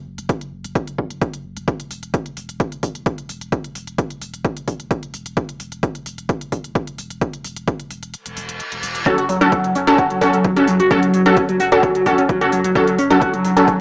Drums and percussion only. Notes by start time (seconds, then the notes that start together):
0.18 closed hi-hat
0.29 kick, closed hi-hat
0.41 closed hi-hat
0.64 closed hi-hat
0.75 kick, closed hi-hat
0.87 closed hi-hat
0.98 kick
1.10 closed hi-hat
1.22 kick, closed hi-hat
1.34 closed hi-hat
1.57 closed hi-hat
1.68 kick, closed hi-hat
1.80 closed hi-hat
1.91 open hi-hat
2.03 closed hi-hat
2.14 kick, closed hi-hat
2.26 closed hi-hat
2.37 open hi-hat
2.49 closed hi-hat
2.60 kick, closed hi-hat
2.72 closed hi-hat
2.83 kick, open hi-hat
2.95 closed hi-hat
3.06 kick, closed hi-hat
3.18 closed hi-hat
3.29 open hi-hat
3.41 closed hi-hat
3.52 kick, closed hi-hat
3.64 closed hi-hat
3.75 open hi-hat
3.87 closed hi-hat
3.98 kick, closed hi-hat
4.10 closed hi-hat
4.22 open hi-hat
4.34 closed hi-hat
4.45 kick, closed hi-hat
4.57 closed hi-hat
4.68 kick, open hi-hat
4.80 closed hi-hat
4.91 kick, closed hi-hat
5.03 closed hi-hat
5.14 open hi-hat
5.26 closed hi-hat
5.37 kick, closed hi-hat
5.49 closed hi-hat
5.60 open hi-hat
5.72 closed hi-hat
5.83 kick, closed hi-hat
5.95 closed hi-hat
6.06 open hi-hat
6.18 closed hi-hat
6.29 kick, closed hi-hat
6.41 closed hi-hat
6.52 kick, open hi-hat
6.64 closed hi-hat
6.75 kick, closed hi-hat
6.87 closed hi-hat
6.98 open hi-hat
7.10 closed hi-hat
7.21 kick, closed hi-hat
7.33 closed hi-hat
7.44 open hi-hat
7.56 closed hi-hat
7.68 kick, closed hi-hat
7.80 closed hi-hat
7.91 open hi-hat
8.03 closed hi-hat
8.14 closed hi-hat
8.26 closed hi-hat
8.37 open hi-hat
8.49 closed hi-hat
8.60 closed hi-hat
8.72 closed hi-hat
8.83 open hi-hat
8.95 closed hi-hat
9.06 kick, closed hi-hat
9.18 closed hi-hat
9.29 open hi-hat
9.41 closed hi-hat
9.52 kick, closed hi-hat
9.64 closed hi-hat
9.75 open hi-hat
9.87 closed hi-hat
9.98 kick, closed hi-hat
10.10 closed hi-hat
10.21 kick, open hi-hat
10.33 closed hi-hat
10.44 kick, closed hi-hat
10.56 closed hi-hat
10.68 open hi-hat
10.80 closed hi-hat
10.91 kick, closed hi-hat
11.03 closed hi-hat
11.14 open hi-hat
11.26 closed hi-hat
11.37 kick, closed hi-hat
11.49 closed hi-hat
11.60 open hi-hat
11.72 closed hi-hat
11.83 kick, closed hi-hat
11.95 closed hi-hat
12.06 kick, open hi-hat
12.18 closed hi-hat
12.29 kick, closed hi-hat
12.41 closed hi-hat
12.52 open hi-hat
12.64 closed hi-hat
12.75 kick, closed hi-hat
12.88 closed hi-hat
12.98 open hi-hat
13.11 closed hi-hat
13.22 kick, closed hi-hat
13.34 closed hi-hat
13.45 open hi-hat
13.57 closed hi-hat
13.68 kick, closed hi-hat